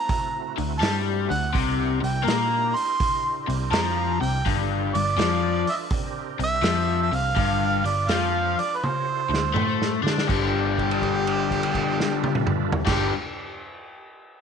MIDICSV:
0, 0, Header, 1, 6, 480
1, 0, Start_track
1, 0, Tempo, 728155
1, 1018, Time_signature, 4, 2, 24, 8
1, 9499, End_track
2, 0, Start_track
2, 0, Title_t, "Harmonica"
2, 0, Program_c, 0, 22
2, 0, Note_on_c, 0, 82, 99
2, 356, Note_off_c, 0, 82, 0
2, 518, Note_on_c, 0, 81, 102
2, 624, Note_off_c, 0, 81, 0
2, 857, Note_on_c, 0, 78, 85
2, 1004, Note_off_c, 0, 78, 0
2, 1345, Note_on_c, 0, 79, 77
2, 1493, Note_on_c, 0, 82, 94
2, 1503, Note_off_c, 0, 79, 0
2, 1818, Note_on_c, 0, 84, 100
2, 1827, Note_off_c, 0, 82, 0
2, 2299, Note_off_c, 0, 84, 0
2, 2452, Note_on_c, 0, 82, 109
2, 2773, Note_on_c, 0, 79, 91
2, 2783, Note_off_c, 0, 82, 0
2, 2932, Note_off_c, 0, 79, 0
2, 3257, Note_on_c, 0, 74, 106
2, 3754, Note_on_c, 0, 76, 93
2, 3764, Note_off_c, 0, 74, 0
2, 3771, Note_on_c, 0, 75, 72
2, 3781, Note_off_c, 0, 76, 0
2, 3784, Note_off_c, 0, 75, 0
2, 4245, Note_on_c, 0, 76, 120
2, 4624, Note_off_c, 0, 76, 0
2, 4631, Note_on_c, 0, 76, 87
2, 4713, Note_on_c, 0, 77, 108
2, 4723, Note_off_c, 0, 76, 0
2, 5180, Note_on_c, 0, 74, 90
2, 5190, Note_off_c, 0, 77, 0
2, 5331, Note_on_c, 0, 77, 94
2, 5341, Note_off_c, 0, 74, 0
2, 5663, Note_on_c, 0, 74, 87
2, 5672, Note_off_c, 0, 77, 0
2, 5779, Note_on_c, 0, 71, 56
2, 5789, Note_off_c, 0, 74, 0
2, 5830, Note_on_c, 0, 72, 75
2, 5840, Note_off_c, 0, 71, 0
2, 6628, Note_off_c, 0, 72, 0
2, 6782, Note_on_c, 0, 67, 91
2, 8378, Note_off_c, 0, 67, 0
2, 8477, Note_on_c, 0, 67, 95
2, 8641, Note_off_c, 0, 67, 0
2, 9499, End_track
3, 0, Start_track
3, 0, Title_t, "Tonewheel organ"
3, 0, Program_c, 1, 16
3, 0, Note_on_c, 1, 57, 69
3, 0, Note_on_c, 1, 60, 73
3, 0, Note_on_c, 1, 64, 73
3, 0, Note_on_c, 1, 66, 67
3, 995, Note_off_c, 1, 60, 0
3, 996, Note_off_c, 1, 64, 0
3, 996, Note_off_c, 1, 66, 0
3, 998, Note_off_c, 1, 57, 0
3, 1016, Note_on_c, 1, 62, 73
3, 1016, Note_on_c, 1, 70, 72
3, 1017, Note_on_c, 1, 67, 72
3, 1019, Note_on_c, 1, 64, 78
3, 2915, Note_off_c, 1, 62, 0
3, 2915, Note_off_c, 1, 70, 0
3, 2916, Note_off_c, 1, 67, 0
3, 2917, Note_off_c, 1, 64, 0
3, 2934, Note_on_c, 1, 69, 68
3, 2938, Note_on_c, 1, 71, 73
3, 2941, Note_on_c, 1, 62, 72
3, 2941, Note_on_c, 1, 65, 68
3, 3885, Note_off_c, 1, 69, 0
3, 3887, Note_off_c, 1, 71, 0
3, 3888, Note_off_c, 1, 62, 0
3, 3888, Note_off_c, 1, 65, 0
3, 3905, Note_on_c, 1, 70, 69
3, 3907, Note_on_c, 1, 62, 67
3, 3910, Note_on_c, 1, 60, 66
3, 3910, Note_on_c, 1, 67, 64
3, 4851, Note_off_c, 1, 62, 0
3, 4851, Note_off_c, 1, 70, 0
3, 4853, Note_off_c, 1, 60, 0
3, 4853, Note_off_c, 1, 67, 0
3, 4864, Note_on_c, 1, 69, 75
3, 4867, Note_on_c, 1, 71, 70
3, 4868, Note_on_c, 1, 62, 76
3, 4877, Note_on_c, 1, 65, 74
3, 5811, Note_off_c, 1, 69, 0
3, 5812, Note_off_c, 1, 71, 0
3, 5813, Note_off_c, 1, 62, 0
3, 5817, Note_off_c, 1, 65, 0
3, 5824, Note_on_c, 1, 70, 58
3, 5827, Note_on_c, 1, 65, 57
3, 5829, Note_on_c, 1, 73, 61
3, 5831, Note_on_c, 1, 67, 63
3, 5980, Note_off_c, 1, 70, 0
3, 5982, Note_off_c, 1, 65, 0
3, 5982, Note_on_c, 1, 66, 58
3, 5983, Note_off_c, 1, 67, 0
3, 5983, Note_off_c, 1, 73, 0
3, 5986, Note_on_c, 1, 69, 67
3, 5987, Note_on_c, 1, 64, 62
3, 5990, Note_on_c, 1, 72, 60
3, 6767, Note_off_c, 1, 69, 0
3, 6772, Note_off_c, 1, 66, 0
3, 6774, Note_on_c, 1, 62, 74
3, 6775, Note_off_c, 1, 64, 0
3, 6775, Note_on_c, 1, 69, 70
3, 6776, Note_off_c, 1, 72, 0
3, 6776, Note_on_c, 1, 71, 73
3, 6778, Note_on_c, 1, 65, 70
3, 8384, Note_off_c, 1, 62, 0
3, 8384, Note_off_c, 1, 69, 0
3, 8385, Note_off_c, 1, 71, 0
3, 8386, Note_off_c, 1, 65, 0
3, 8490, Note_on_c, 1, 62, 64
3, 8495, Note_on_c, 1, 69, 65
3, 8497, Note_on_c, 1, 65, 71
3, 8497, Note_on_c, 1, 71, 64
3, 8657, Note_off_c, 1, 62, 0
3, 8660, Note_off_c, 1, 69, 0
3, 8661, Note_off_c, 1, 65, 0
3, 8661, Note_off_c, 1, 71, 0
3, 9499, End_track
4, 0, Start_track
4, 0, Title_t, "Overdriven electric guitar"
4, 0, Program_c, 2, 29
4, 381, Note_on_c, 2, 50, 75
4, 507, Note_off_c, 2, 50, 0
4, 534, Note_on_c, 2, 55, 98
4, 851, Note_off_c, 2, 55, 0
4, 858, Note_on_c, 2, 50, 65
4, 985, Note_off_c, 2, 50, 0
4, 1010, Note_on_c, 2, 48, 95
4, 1321, Note_off_c, 2, 48, 0
4, 1328, Note_on_c, 2, 48, 62
4, 1460, Note_off_c, 2, 48, 0
4, 1475, Note_on_c, 2, 58, 93
4, 1801, Note_off_c, 2, 58, 0
4, 2291, Note_on_c, 2, 48, 74
4, 2420, Note_off_c, 2, 48, 0
4, 2450, Note_on_c, 2, 53, 97
4, 2768, Note_off_c, 2, 53, 0
4, 2774, Note_on_c, 2, 48, 71
4, 2902, Note_off_c, 2, 48, 0
4, 2938, Note_on_c, 2, 43, 105
4, 3252, Note_off_c, 2, 43, 0
4, 3264, Note_on_c, 2, 43, 66
4, 3386, Note_off_c, 2, 43, 0
4, 3414, Note_on_c, 2, 53, 106
4, 3729, Note_off_c, 2, 53, 0
4, 4217, Note_on_c, 2, 48, 74
4, 4343, Note_off_c, 2, 48, 0
4, 4365, Note_on_c, 2, 53, 86
4, 4685, Note_off_c, 2, 53, 0
4, 4696, Note_on_c, 2, 48, 75
4, 4822, Note_off_c, 2, 48, 0
4, 4854, Note_on_c, 2, 43, 97
4, 5165, Note_off_c, 2, 43, 0
4, 5173, Note_on_c, 2, 43, 69
4, 5301, Note_off_c, 2, 43, 0
4, 5342, Note_on_c, 2, 53, 97
4, 5654, Note_off_c, 2, 53, 0
4, 6136, Note_on_c, 2, 50, 75
4, 6263, Note_off_c, 2, 50, 0
4, 6288, Note_on_c, 2, 57, 91
4, 6606, Note_off_c, 2, 57, 0
4, 6608, Note_on_c, 2, 62, 93
4, 6766, Note_off_c, 2, 62, 0
4, 6769, Note_on_c, 2, 43, 89
4, 6778, Note_on_c, 2, 50, 88
4, 6792, Note_on_c, 2, 55, 98
4, 8468, Note_off_c, 2, 43, 0
4, 8471, Note_on_c, 2, 43, 92
4, 8483, Note_off_c, 2, 50, 0
4, 8485, Note_on_c, 2, 50, 86
4, 8492, Note_off_c, 2, 55, 0
4, 8494, Note_on_c, 2, 55, 102
4, 8649, Note_off_c, 2, 43, 0
4, 8657, Note_off_c, 2, 50, 0
4, 8661, Note_off_c, 2, 55, 0
4, 9499, End_track
5, 0, Start_track
5, 0, Title_t, "Picked electric bass"
5, 0, Program_c, 3, 34
5, 385, Note_on_c, 3, 38, 72
5, 529, Note_off_c, 3, 38, 0
5, 538, Note_on_c, 3, 43, 103
5, 840, Note_off_c, 3, 43, 0
5, 860, Note_on_c, 3, 38, 76
5, 1006, Note_off_c, 3, 38, 0
5, 1021, Note_on_c, 3, 36, 95
5, 1321, Note_off_c, 3, 36, 0
5, 1338, Note_on_c, 3, 36, 78
5, 1484, Note_off_c, 3, 36, 0
5, 1497, Note_on_c, 3, 46, 93
5, 1798, Note_off_c, 3, 46, 0
5, 2297, Note_on_c, 3, 36, 78
5, 2443, Note_off_c, 3, 36, 0
5, 2451, Note_on_c, 3, 41, 101
5, 2755, Note_off_c, 3, 41, 0
5, 2775, Note_on_c, 3, 36, 80
5, 2922, Note_off_c, 3, 36, 0
5, 2937, Note_on_c, 3, 31, 85
5, 3238, Note_off_c, 3, 31, 0
5, 3263, Note_on_c, 3, 31, 77
5, 3401, Note_off_c, 3, 31, 0
5, 3405, Note_on_c, 3, 41, 97
5, 3711, Note_off_c, 3, 41, 0
5, 4214, Note_on_c, 3, 36, 79
5, 4362, Note_off_c, 3, 36, 0
5, 4366, Note_on_c, 3, 41, 94
5, 4672, Note_off_c, 3, 41, 0
5, 4690, Note_on_c, 3, 36, 77
5, 4839, Note_off_c, 3, 36, 0
5, 4855, Note_on_c, 3, 31, 97
5, 5157, Note_off_c, 3, 31, 0
5, 5172, Note_on_c, 3, 31, 79
5, 5320, Note_off_c, 3, 31, 0
5, 5327, Note_on_c, 3, 41, 86
5, 5633, Note_off_c, 3, 41, 0
5, 6126, Note_on_c, 3, 38, 65
5, 6278, Note_off_c, 3, 38, 0
5, 6290, Note_on_c, 3, 45, 97
5, 6595, Note_off_c, 3, 45, 0
5, 6618, Note_on_c, 3, 50, 82
5, 6764, Note_off_c, 3, 50, 0
5, 6784, Note_on_c, 3, 31, 89
5, 8379, Note_off_c, 3, 31, 0
5, 8485, Note_on_c, 3, 31, 90
5, 8645, Note_off_c, 3, 31, 0
5, 9499, End_track
6, 0, Start_track
6, 0, Title_t, "Drums"
6, 60, Note_on_c, 9, 46, 75
6, 61, Note_on_c, 9, 36, 110
6, 126, Note_off_c, 9, 46, 0
6, 127, Note_off_c, 9, 36, 0
6, 383, Note_on_c, 9, 46, 50
6, 449, Note_off_c, 9, 46, 0
6, 542, Note_on_c, 9, 46, 78
6, 548, Note_on_c, 9, 38, 107
6, 608, Note_off_c, 9, 46, 0
6, 613, Note_off_c, 9, 38, 0
6, 866, Note_on_c, 9, 46, 56
6, 932, Note_off_c, 9, 46, 0
6, 1020, Note_on_c, 9, 36, 100
6, 1023, Note_on_c, 9, 46, 78
6, 1086, Note_off_c, 9, 36, 0
6, 1089, Note_off_c, 9, 46, 0
6, 1344, Note_on_c, 9, 46, 55
6, 1410, Note_off_c, 9, 46, 0
6, 1501, Note_on_c, 9, 46, 70
6, 1506, Note_on_c, 9, 38, 107
6, 1566, Note_off_c, 9, 46, 0
6, 1572, Note_off_c, 9, 38, 0
6, 1822, Note_on_c, 9, 46, 59
6, 1888, Note_off_c, 9, 46, 0
6, 1978, Note_on_c, 9, 46, 79
6, 1979, Note_on_c, 9, 36, 109
6, 2044, Note_off_c, 9, 46, 0
6, 2045, Note_off_c, 9, 36, 0
6, 2304, Note_on_c, 9, 46, 53
6, 2370, Note_off_c, 9, 46, 0
6, 2459, Note_on_c, 9, 46, 75
6, 2464, Note_on_c, 9, 38, 109
6, 2525, Note_off_c, 9, 46, 0
6, 2530, Note_off_c, 9, 38, 0
6, 2790, Note_on_c, 9, 46, 55
6, 2855, Note_off_c, 9, 46, 0
6, 2938, Note_on_c, 9, 36, 96
6, 2938, Note_on_c, 9, 46, 75
6, 3004, Note_off_c, 9, 36, 0
6, 3004, Note_off_c, 9, 46, 0
6, 3262, Note_on_c, 9, 46, 52
6, 3328, Note_off_c, 9, 46, 0
6, 3420, Note_on_c, 9, 46, 71
6, 3425, Note_on_c, 9, 38, 107
6, 3485, Note_off_c, 9, 46, 0
6, 3491, Note_off_c, 9, 38, 0
6, 3739, Note_on_c, 9, 46, 57
6, 3805, Note_off_c, 9, 46, 0
6, 3893, Note_on_c, 9, 46, 79
6, 3895, Note_on_c, 9, 36, 115
6, 3958, Note_off_c, 9, 46, 0
6, 3961, Note_off_c, 9, 36, 0
6, 4218, Note_on_c, 9, 46, 50
6, 4284, Note_off_c, 9, 46, 0
6, 4373, Note_on_c, 9, 46, 69
6, 4378, Note_on_c, 9, 38, 120
6, 4439, Note_off_c, 9, 46, 0
6, 4444, Note_off_c, 9, 38, 0
6, 4700, Note_on_c, 9, 46, 60
6, 4766, Note_off_c, 9, 46, 0
6, 4854, Note_on_c, 9, 46, 76
6, 4856, Note_on_c, 9, 36, 114
6, 4920, Note_off_c, 9, 46, 0
6, 4922, Note_off_c, 9, 36, 0
6, 5177, Note_on_c, 9, 46, 58
6, 5243, Note_off_c, 9, 46, 0
6, 5331, Note_on_c, 9, 46, 72
6, 5336, Note_on_c, 9, 38, 96
6, 5397, Note_off_c, 9, 46, 0
6, 5402, Note_off_c, 9, 38, 0
6, 5661, Note_on_c, 9, 46, 57
6, 5727, Note_off_c, 9, 46, 0
6, 5824, Note_on_c, 9, 48, 61
6, 5890, Note_off_c, 9, 48, 0
6, 6155, Note_on_c, 9, 38, 64
6, 6221, Note_off_c, 9, 38, 0
6, 6303, Note_on_c, 9, 45, 87
6, 6369, Note_off_c, 9, 45, 0
6, 6472, Note_on_c, 9, 38, 67
6, 6538, Note_off_c, 9, 38, 0
6, 6636, Note_on_c, 9, 38, 92
6, 6702, Note_off_c, 9, 38, 0
6, 6713, Note_on_c, 9, 38, 85
6, 6779, Note_off_c, 9, 38, 0
6, 6784, Note_on_c, 9, 36, 111
6, 6788, Note_on_c, 9, 49, 86
6, 6850, Note_off_c, 9, 36, 0
6, 6854, Note_off_c, 9, 49, 0
6, 7108, Note_on_c, 9, 36, 64
6, 7113, Note_on_c, 9, 49, 42
6, 7174, Note_off_c, 9, 36, 0
6, 7179, Note_off_c, 9, 49, 0
6, 7193, Note_on_c, 9, 57, 42
6, 7258, Note_off_c, 9, 57, 0
6, 7264, Note_on_c, 9, 36, 58
6, 7270, Note_on_c, 9, 49, 45
6, 7330, Note_off_c, 9, 36, 0
6, 7336, Note_off_c, 9, 49, 0
6, 7430, Note_on_c, 9, 57, 46
6, 7496, Note_off_c, 9, 57, 0
6, 7587, Note_on_c, 9, 36, 59
6, 7592, Note_on_c, 9, 49, 45
6, 7653, Note_off_c, 9, 36, 0
6, 7658, Note_off_c, 9, 49, 0
6, 7667, Note_on_c, 9, 57, 50
6, 7732, Note_off_c, 9, 57, 0
6, 7742, Note_on_c, 9, 36, 71
6, 7745, Note_on_c, 9, 49, 57
6, 7808, Note_off_c, 9, 36, 0
6, 7811, Note_off_c, 9, 49, 0
6, 7912, Note_on_c, 9, 38, 84
6, 7978, Note_off_c, 9, 38, 0
6, 8066, Note_on_c, 9, 48, 89
6, 8132, Note_off_c, 9, 48, 0
6, 8142, Note_on_c, 9, 47, 91
6, 8208, Note_off_c, 9, 47, 0
6, 8218, Note_on_c, 9, 45, 103
6, 8284, Note_off_c, 9, 45, 0
6, 8388, Note_on_c, 9, 43, 98
6, 8454, Note_off_c, 9, 43, 0
6, 8481, Note_on_c, 9, 49, 96
6, 8484, Note_on_c, 9, 36, 107
6, 8487, Note_on_c, 9, 38, 92
6, 8547, Note_off_c, 9, 49, 0
6, 8550, Note_off_c, 9, 36, 0
6, 8553, Note_off_c, 9, 38, 0
6, 9499, End_track
0, 0, End_of_file